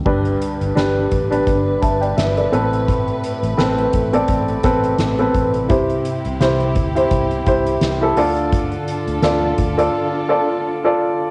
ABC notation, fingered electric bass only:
X:1
M:4/4
L:1/16
Q:"Swing 16ths" 1/4=85
K:Gmix
V:1 name="Fingered electric bass" clef=bass
G,,,2 z G,,, z2 A,,,2 G,,,2 G,,,2 G,,,2 A,,,2- | A,,,2 z A,,, A,,,2 A,,,2 A,,,2 A,,,2 A,,,2 A,,,2 | C,,2 z C,, C,,2 D,,2 C,,2 C,,2 C,,2 D,,2- | D,,2 z D,, D,,2 D,,2 z8 |]